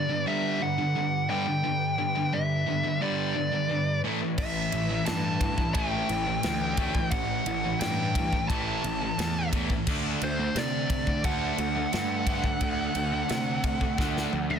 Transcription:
Already playing: string section G3 D4 A4 B4, lead electric guitar D5
0.10 distorted electric guitar G2 D3
0.26 distorted electric guitar G2 D3 G3, lead electric guitar E5
0.60 distorted electric guitar G2 D3, lead electric guitar F#5
0.78 distorted electric guitar G2 D3
0.96 distorted electric guitar G2 D3
1.29 distorted electric guitar G2 D3 G3, lead electric guitar G5
1.47 distorted electric guitar G2 D3
1.63 distorted electric guitar G2 D3
1.98 distorted electric guitar G2 D3
2.16 distorted electric guitar G2 D3
2.33 distorted electric guitar G2 D3, lead electric guitar E5
2.68 distorted electric guitar G2 D3
2.84 distorted electric guitar G2 D3
3.01 distorted electric guitar G2 D3 G3, lead electric guitar D5
3.36 distorted electric guitar G2 D3
3.53 distorted electric guitar G2 D3
3.71 distorted electric guitar G2 D3
4.03 distorted electric guitar A2 E3 A3, string section A3 E4 C#5
4.22 distorted electric guitar A2 E3
4.38 picked electric bass A1, distorted electric guitar A2 E3, lead electric guitar E5, kick, crash
4.72 picked electric bass A1, distorted electric guitar A2 E3, ride
4.90 distorted electric guitar A2 E3
5.06 picked electric bass G2, distorted electric guitar A2 E3, lead electric guitar A5, snare, ride
5.41 distorted electric guitar A2 E3, kick, ride
5.58 distorted electric guitar A2 E3, kick
5.74 picked electric bass A1, distorted electric guitar A2 E3 A3, lead electric guitar G5, kick, ride
6.09 picked electric bass A1, distorted electric guitar A2 E3, ride
6.27 distorted electric guitar A2 E3
6.43 picked electric bass D2, distorted electric guitar A2 E3, snare, ride
6.77 distorted electric guitar A2 E3 A3, kick, ride
6.95 distorted electric guitar A2 E3, kick
7.11 picked electric bass A1, distorted electric guitar A2 E3, lead electric guitar F#5, kick, ride
7.46 picked electric bass A1, distorted electric guitar A2 E3, ride
7.64 distorted electric guitar A2 E3
7.80 picked electric bass G2, distorted electric guitar A2 E3, lead electric guitar G5, snare, ride
8.15 distorted electric guitar A2 E3, kick, ride
8.33 distorted electric guitar A2 E3, kick
8.49 picked electric bass A1, distorted electric guitar A2 E3 A3, lead electric guitar A5, kick, ride
8.84 picked electric bass A1, distorted electric guitar A2 E3, ride
9.02 distorted electric guitar A2 E3
9.18 picked electric bass E2, distorted electric guitar A2 E3, snare, ride
9.53 distorted electric guitar A2 E3 A3, kick, ride
9.70 distorted electric guitar A2 E3, kick
9.87 picked electric bass D2, distorted electric guitar D3 A3 D4, string section D4 A4 E5 F#5, kick, crash
10.22 picked electric bass D2, distorted electric guitar D3 A3, lead electric guitar C5, ride
10.39 distorted electric guitar D3 A3
10.55 picked electric bass C3, distorted electric guitar D3 A3, lead electric guitar D5, snare, ride
10.90 distorted electric guitar D3 A3, kick, ride
11.07 distorted electric guitar D3 A3, kick
11.24 picked electric bass D2, distorted electric guitar D3 A3 D4, lead electric guitar F#5, kick, ride
11.58 picked electric bass D2, distorted electric guitar D3 A3, ride
11.76 distorted electric guitar D3 A3
11.93 picked electric bass G2, distorted electric guitar D3 A3, snare, ride
12.27 distorted electric guitar D3 A3 D4, kick, ride
12.44 distorted electric guitar D3 A3, kick
12.61 picked electric bass D2, distorted electric guitar D3 A3, kick, ride
12.95 picked electric bass D2, distorted electric guitar D3 A3, ride
13.12 distorted electric guitar D3 A3
13.29 picked electric bass C3, distorted electric guitar D3 A3, snare, ride
13.64 distorted electric guitar D3 A3, kick, ride
13.81 distorted electric guitar D3 A3, kick
13.98 picked electric bass D2, distorted electric guitar D3 A3 D4, kick, snare
14.17 snare
14.33 picked electric bass D2, distorted electric guitar D3 A3, high tom
14.50 distorted electric guitar D3 A3, high tom

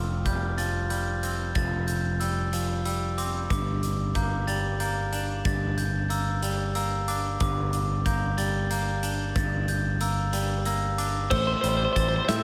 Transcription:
Already playing: picked electric bass F1, clean electric guitar F3 C4, glockenspiel F6
0.25 clean electric guitar G3, glockenspiel G6, kick, closed hi-hat
0.58 clean electric guitar F3, glockenspiel A6, closed hi-hat
0.90 clean electric guitar G3, glockenspiel G6, closed hi-hat
1.23 clean electric guitar C4, closed hi-hat
1.55 picked electric bass F1, clean electric guitar F3, glockenspiel A6, kick, closed hi-hat
1.87 glockenspiel G6, closed hi-hat
2.20 clean electric guitar G3, glockenspiel E6, closed hi-hat
2.53 clean electric guitar F3, closed hi-hat
2.85 clean electric guitar G3, glockenspiel E6, closed hi-hat
3.18 clean electric guitar C4, glockenspiel D6, closed hi-hat
3.50 picked electric bass G1, clean electric guitar G2, glockenspiel D6, kick, closed hi-hat
3.83 closed hi-hat
4.15 clean electric guitar A#3, glockenspiel G6, kick, closed hi-hat
4.47 clean electric guitar G3, glockenspiel A6, closed hi-hat
4.80 clean electric guitar A#3, glockenspiel G6, closed hi-hat
5.13 clean electric guitar D4, closed hi-hat
5.45 picked electric bass G1, clean electric guitar G2, glockenspiel A6, kick, closed hi-hat
5.78 glockenspiel G6, closed hi-hat
6.10 clean electric guitar A#3, glockenspiel E6, closed hi-hat
6.42 clean electric guitar G3, closed hi-hat
6.75 clean electric guitar A#3, glockenspiel E6, closed hi-hat
7.08 clean electric guitar D4, glockenspiel D6, closed hi-hat
7.40 picked electric bass G1, clean electric guitar G2, glockenspiel D6, kick, closed hi-hat
7.73 closed hi-hat
8.06 clean electric guitar A#3, glockenspiel G6, kick, closed hi-hat
8.38 clean electric guitar G3, glockenspiel A6, closed hi-hat
8.71 clean electric guitar A#3, glockenspiel G6, closed hi-hat
9.03 clean electric guitar D4, closed hi-hat
9.35 picked electric bass G1, clean electric guitar G2, glockenspiel A6, kick, closed hi-hat
9.68 glockenspiel G6, closed hi-hat
10.01 clean electric guitar A#3, glockenspiel E6, closed hi-hat
10.33 clean electric guitar G3, closed hi-hat
10.65 clean electric guitar A#3, glockenspiel E6, closed hi-hat
10.98 clean electric guitar D4, glockenspiel D6, closed hi-hat
11.30 picked electric bass A1, clean electric guitar A2 C5, glockenspiel E6, kick, crash
11.38 clean electric guitar C5
11.47 clean electric guitar C5
11.54 clean electric guitar C5
11.61 picked electric bass A1, clean electric guitar G3 C5, closed hi-hat
11.69 clean electric guitar C5
11.77 clean electric guitar C5
11.85 clean electric guitar C5
11.93 picked electric bass A1, clean electric guitar E3 C5, glockenspiel A6, kick, closed hi-hat
12.00 clean electric guitar C5
12.08 clean electric guitar C5
12.16 clean electric guitar C5
12.25 clean electric guitar C4 C5 E5, glockenspiel G6
12.29 picked electric bass A2, snare, closed hi-hat
12.36 clean electric guitar E5

